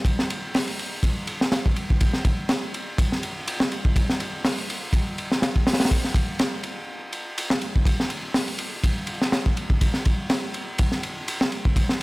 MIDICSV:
0, 0, Header, 1, 2, 480
1, 0, Start_track
1, 0, Tempo, 487805
1, 55, Time_signature, 4, 2, 24, 8
1, 11836, End_track
2, 0, Start_track
2, 0, Title_t, "Drums"
2, 46, Note_on_c, 9, 36, 102
2, 52, Note_on_c, 9, 51, 89
2, 145, Note_off_c, 9, 36, 0
2, 150, Note_off_c, 9, 51, 0
2, 187, Note_on_c, 9, 38, 45
2, 285, Note_off_c, 9, 38, 0
2, 297, Note_on_c, 9, 51, 71
2, 395, Note_off_c, 9, 51, 0
2, 537, Note_on_c, 9, 46, 78
2, 541, Note_on_c, 9, 38, 120
2, 635, Note_off_c, 9, 46, 0
2, 639, Note_off_c, 9, 38, 0
2, 664, Note_on_c, 9, 51, 49
2, 763, Note_off_c, 9, 51, 0
2, 779, Note_on_c, 9, 51, 64
2, 877, Note_off_c, 9, 51, 0
2, 1013, Note_on_c, 9, 36, 99
2, 1018, Note_on_c, 9, 51, 79
2, 1111, Note_off_c, 9, 36, 0
2, 1117, Note_off_c, 9, 51, 0
2, 1252, Note_on_c, 9, 51, 69
2, 1351, Note_off_c, 9, 51, 0
2, 1390, Note_on_c, 9, 38, 59
2, 1489, Note_off_c, 9, 38, 0
2, 1494, Note_on_c, 9, 38, 120
2, 1494, Note_on_c, 9, 51, 90
2, 1592, Note_off_c, 9, 38, 0
2, 1593, Note_off_c, 9, 51, 0
2, 1630, Note_on_c, 9, 36, 103
2, 1729, Note_off_c, 9, 36, 0
2, 1735, Note_on_c, 9, 51, 65
2, 1833, Note_off_c, 9, 51, 0
2, 1873, Note_on_c, 9, 36, 96
2, 1971, Note_off_c, 9, 36, 0
2, 1973, Note_on_c, 9, 51, 88
2, 1979, Note_on_c, 9, 36, 118
2, 2072, Note_off_c, 9, 51, 0
2, 2077, Note_off_c, 9, 36, 0
2, 2101, Note_on_c, 9, 38, 40
2, 2199, Note_off_c, 9, 38, 0
2, 2211, Note_on_c, 9, 51, 67
2, 2212, Note_on_c, 9, 36, 94
2, 2309, Note_off_c, 9, 51, 0
2, 2310, Note_off_c, 9, 36, 0
2, 2449, Note_on_c, 9, 51, 82
2, 2451, Note_on_c, 9, 38, 122
2, 2547, Note_off_c, 9, 51, 0
2, 2549, Note_off_c, 9, 38, 0
2, 2698, Note_on_c, 9, 51, 75
2, 2797, Note_off_c, 9, 51, 0
2, 2936, Note_on_c, 9, 36, 109
2, 2939, Note_on_c, 9, 51, 93
2, 3035, Note_off_c, 9, 36, 0
2, 3037, Note_off_c, 9, 51, 0
2, 3073, Note_on_c, 9, 38, 37
2, 3172, Note_off_c, 9, 38, 0
2, 3177, Note_on_c, 9, 51, 73
2, 3276, Note_off_c, 9, 51, 0
2, 3420, Note_on_c, 9, 51, 92
2, 3518, Note_off_c, 9, 51, 0
2, 3544, Note_on_c, 9, 38, 127
2, 3643, Note_off_c, 9, 38, 0
2, 3656, Note_on_c, 9, 51, 73
2, 3754, Note_off_c, 9, 51, 0
2, 3788, Note_on_c, 9, 36, 99
2, 3886, Note_off_c, 9, 36, 0
2, 3895, Note_on_c, 9, 36, 119
2, 3897, Note_on_c, 9, 51, 94
2, 3993, Note_off_c, 9, 36, 0
2, 3996, Note_off_c, 9, 51, 0
2, 4030, Note_on_c, 9, 38, 48
2, 4128, Note_off_c, 9, 38, 0
2, 4133, Note_on_c, 9, 51, 68
2, 4232, Note_off_c, 9, 51, 0
2, 4375, Note_on_c, 9, 38, 106
2, 4377, Note_on_c, 9, 46, 80
2, 4473, Note_off_c, 9, 38, 0
2, 4475, Note_off_c, 9, 46, 0
2, 4509, Note_on_c, 9, 51, 45
2, 4607, Note_off_c, 9, 51, 0
2, 4622, Note_on_c, 9, 51, 73
2, 4720, Note_off_c, 9, 51, 0
2, 4849, Note_on_c, 9, 36, 101
2, 4855, Note_on_c, 9, 51, 84
2, 4947, Note_off_c, 9, 36, 0
2, 4954, Note_off_c, 9, 51, 0
2, 5098, Note_on_c, 9, 51, 64
2, 5197, Note_off_c, 9, 51, 0
2, 5231, Note_on_c, 9, 38, 51
2, 5329, Note_off_c, 9, 38, 0
2, 5336, Note_on_c, 9, 38, 127
2, 5340, Note_on_c, 9, 51, 86
2, 5434, Note_off_c, 9, 38, 0
2, 5439, Note_off_c, 9, 51, 0
2, 5469, Note_on_c, 9, 36, 102
2, 5567, Note_off_c, 9, 36, 0
2, 5576, Note_on_c, 9, 38, 86
2, 5580, Note_on_c, 9, 46, 60
2, 5642, Note_off_c, 9, 38, 0
2, 5642, Note_on_c, 9, 38, 83
2, 5645, Note_off_c, 9, 46, 0
2, 5645, Note_on_c, 9, 46, 59
2, 5706, Note_off_c, 9, 38, 0
2, 5706, Note_on_c, 9, 38, 85
2, 5708, Note_off_c, 9, 46, 0
2, 5708, Note_on_c, 9, 46, 58
2, 5756, Note_off_c, 9, 46, 0
2, 5756, Note_on_c, 9, 46, 57
2, 5757, Note_off_c, 9, 38, 0
2, 5757, Note_on_c, 9, 38, 95
2, 5817, Note_on_c, 9, 36, 101
2, 5819, Note_on_c, 9, 51, 90
2, 5854, Note_off_c, 9, 46, 0
2, 5856, Note_off_c, 9, 38, 0
2, 5916, Note_off_c, 9, 36, 0
2, 5917, Note_off_c, 9, 51, 0
2, 5947, Note_on_c, 9, 38, 37
2, 6046, Note_off_c, 9, 38, 0
2, 6046, Note_on_c, 9, 36, 99
2, 6056, Note_on_c, 9, 51, 68
2, 6145, Note_off_c, 9, 36, 0
2, 6154, Note_off_c, 9, 51, 0
2, 6290, Note_on_c, 9, 51, 94
2, 6295, Note_on_c, 9, 38, 111
2, 6388, Note_off_c, 9, 51, 0
2, 6393, Note_off_c, 9, 38, 0
2, 6528, Note_on_c, 9, 51, 68
2, 6626, Note_off_c, 9, 51, 0
2, 7012, Note_on_c, 9, 51, 64
2, 7110, Note_off_c, 9, 51, 0
2, 7259, Note_on_c, 9, 51, 83
2, 7358, Note_off_c, 9, 51, 0
2, 7383, Note_on_c, 9, 38, 112
2, 7481, Note_off_c, 9, 38, 0
2, 7492, Note_on_c, 9, 51, 67
2, 7591, Note_off_c, 9, 51, 0
2, 7632, Note_on_c, 9, 36, 90
2, 7729, Note_off_c, 9, 36, 0
2, 7729, Note_on_c, 9, 36, 114
2, 7738, Note_on_c, 9, 51, 90
2, 7827, Note_off_c, 9, 36, 0
2, 7836, Note_off_c, 9, 51, 0
2, 7871, Note_on_c, 9, 38, 44
2, 7969, Note_off_c, 9, 38, 0
2, 7969, Note_on_c, 9, 51, 71
2, 8068, Note_off_c, 9, 51, 0
2, 8210, Note_on_c, 9, 38, 123
2, 8215, Note_on_c, 9, 46, 81
2, 8308, Note_off_c, 9, 38, 0
2, 8313, Note_off_c, 9, 46, 0
2, 8342, Note_on_c, 9, 51, 48
2, 8440, Note_off_c, 9, 51, 0
2, 8447, Note_on_c, 9, 51, 69
2, 8546, Note_off_c, 9, 51, 0
2, 8694, Note_on_c, 9, 36, 103
2, 8696, Note_on_c, 9, 51, 96
2, 8793, Note_off_c, 9, 36, 0
2, 8794, Note_off_c, 9, 51, 0
2, 8923, Note_on_c, 9, 51, 73
2, 9021, Note_off_c, 9, 51, 0
2, 9068, Note_on_c, 9, 38, 54
2, 9166, Note_off_c, 9, 38, 0
2, 9174, Note_on_c, 9, 38, 121
2, 9176, Note_on_c, 9, 51, 84
2, 9272, Note_off_c, 9, 38, 0
2, 9275, Note_off_c, 9, 51, 0
2, 9309, Note_on_c, 9, 36, 93
2, 9407, Note_off_c, 9, 36, 0
2, 9416, Note_on_c, 9, 51, 68
2, 9514, Note_off_c, 9, 51, 0
2, 9544, Note_on_c, 9, 36, 90
2, 9642, Note_off_c, 9, 36, 0
2, 9654, Note_on_c, 9, 51, 91
2, 9656, Note_on_c, 9, 36, 102
2, 9752, Note_off_c, 9, 51, 0
2, 9754, Note_off_c, 9, 36, 0
2, 9779, Note_on_c, 9, 38, 36
2, 9877, Note_off_c, 9, 38, 0
2, 9891, Note_on_c, 9, 51, 66
2, 9899, Note_on_c, 9, 36, 97
2, 9989, Note_off_c, 9, 51, 0
2, 9997, Note_off_c, 9, 36, 0
2, 10132, Note_on_c, 9, 51, 95
2, 10134, Note_on_c, 9, 38, 125
2, 10231, Note_off_c, 9, 51, 0
2, 10232, Note_off_c, 9, 38, 0
2, 10372, Note_on_c, 9, 51, 67
2, 10471, Note_off_c, 9, 51, 0
2, 10611, Note_on_c, 9, 51, 95
2, 10621, Note_on_c, 9, 36, 105
2, 10709, Note_off_c, 9, 51, 0
2, 10719, Note_off_c, 9, 36, 0
2, 10742, Note_on_c, 9, 38, 35
2, 10841, Note_off_c, 9, 38, 0
2, 10855, Note_on_c, 9, 51, 69
2, 10953, Note_off_c, 9, 51, 0
2, 11098, Note_on_c, 9, 51, 89
2, 11197, Note_off_c, 9, 51, 0
2, 11227, Note_on_c, 9, 38, 122
2, 11326, Note_off_c, 9, 38, 0
2, 11335, Note_on_c, 9, 51, 65
2, 11433, Note_off_c, 9, 51, 0
2, 11466, Note_on_c, 9, 36, 91
2, 11564, Note_off_c, 9, 36, 0
2, 11572, Note_on_c, 9, 36, 107
2, 11575, Note_on_c, 9, 51, 85
2, 11670, Note_off_c, 9, 36, 0
2, 11674, Note_off_c, 9, 51, 0
2, 11703, Note_on_c, 9, 38, 52
2, 11802, Note_off_c, 9, 38, 0
2, 11836, End_track
0, 0, End_of_file